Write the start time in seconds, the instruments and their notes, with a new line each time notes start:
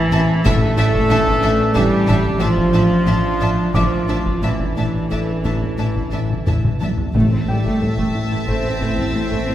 Already playing: synth drone A1, trombone section E3 C4, french horn section E3, cello section E3, clarinet E4, grand piano A6
0.12 double bass section A1, analog synth bass A2, viola section C4, violin section E5 A5
0.45 synth drone A1, double bass section A1, timpani A2, analog synth bass A2, trombone section E3 D4, french horn section A3, cello section A3, viola section D4, clarinet A4, violin section E5 A5, taiko
0.78 double bass section A1, analog synth bass A2, viola section D4, violin section E5 A5
0.95 taiko
1.10 double bass section A1, analog synth bass A2, viola section D4, violin section E5 A5, taiko low
1.27 taiko
1.42 double bass section A1, analog synth bass A2, viola section D4, violin section E5 A5
1.74 double bass section A1, french horn section G3, cello section G3, analog synth bass A3, viola section D4, clarinet G4, violin section E5 A5, taiko
2.07 double bass section A1, analog synth bass A2, viola section D4, violin section E5 A5, taiko
2.25 taiko low
2.40 double bass section A1, analog synth bass A2, french horn section F3, cello section F3, trombone section F3 D4, viola section D4, clarinet F4, violin section E5 A5
2.57 taiko
2.73 double bass section A1, analog synth bass A2, viola section D4, violin section E5 A5
3.06 double bass section A1, analog synth bass A2, viola section D4, violin section E5 A5
3.40 double bass section A1, analog synth bass A2, viola section D4, violin section E5 A5
3.74 synth drone A1, double bass section A1, analog synth bass A2, cello section F3, french horn section F3, viola section D4, clarinet F4, violin section E5 A5, grand piano D6, taiko
4.09 double bass section A1, analog synth bass A2, viola section D4, violin section E5 A5
4.26 taiko
4.41 double bass section A1, analog synth bass A2, trombone section E3 D4, french horn section E3, cello section E3, viola section D4, clarinet E4, violin section E5 A5, taiko low
4.60 taiko
4.77 double bass section A1, analog synth bass A2, viola section D4, violin section E5 A5
5.10 double bass section A1, analog synth bass A3, viola section D4, violin section E5 A5, taiko
5.44 double bass section A1, analog synth bass A2, viola section D4, violin section E5 A5, taiko
5.62 taiko low
5.78 double bass section A1, analog synth bass A2, viola section D4, violin section E5 A5
5.96 taiko
6.12 double bass section A1, analog synth bass A2, viola section D4, violin section E5 A5
6.30 taiko mid
6.46 double bass section A1, analog synth bass A2, viola section D4, violin section E5 A5, taiko low-mid
6.65 taiko mid
6.81 double bass section A1, analog synth bass A2, viola section D4, violin section E5 A5, taiko high
6.98 taiko low
7.14 synth drone A1, double bass section A1, timpani A2, analog synth bass A2, trombone section E3 E4, viola section A3, violin section E5 A5, taiko
7.32 double bass section A1, viola section C4
7.48 double bass section A1, analog synth bass A2, cello section G3, french horn section G3, viola section E4, clarinet G4, grand piano G5
7.65 double bass section A1, viola section A3, taiko
7.81 analog synth bass A2, french horn section A3, cello section A3, clarinet A4, taiko low
7.97 double bass section A1, viola section A3, taiko
8.15 analog synth bass A2
8.31 double bass section A1, viola section E4
8.47 double bass section A1, viola section A3, analog synth bass A3, french horn section C4, cello section C4, clarinet C5, taiko
8.64 double bass section A1, viola section C4
8.80 double bass section A1, analog synth bass A2, viola section A3, taiko
8.97 double bass section A1, viola section C4, taiko low
9.14 double bass section A1, analog synth bass A2, french horn section C4, cello section C4, viola section E4, clarinet C5
9.30 double bass section A1, viola section A3, taiko
9.47 double bass section A1, analog synth bass A2, viola section C4